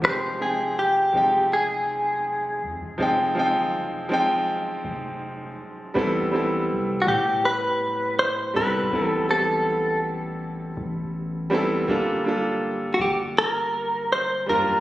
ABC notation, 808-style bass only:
X:1
M:4/4
L:1/16
Q:1/4=81
K:Aphr
V:1 name="808-style bass" clef=bass
F,,,6 F,,,8 F,, F,,, | F,,,3 G,,,3/2 F,,,3/2 z4 F,,,4 z2 | A,,,4 C,,2 A,,8 C,,2 | A,,,8- A,,,2 A,,,6 |
G,,,6 G,,,8 G,, G,,, |]